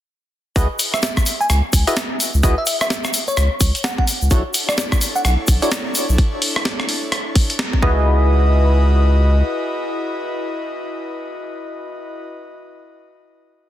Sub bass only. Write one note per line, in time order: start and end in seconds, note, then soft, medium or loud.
0.56 0.68 C#2 loud
1.50 1.61 C#2 loud
1.73 1.85 C#2 medium
2.34 2.42 C#2 medium
2.43 2.55 C#2 loud
3.37 3.49 C#2 loud
3.61 3.72 C#2 medium
4.22 4.29 C#2 medium
4.31 4.43 B1 loud
5.25 5.36 B1 medium
5.48 5.60 B1 medium
6.09 6.17 B1 medium
7.83 9.43 C#2 loud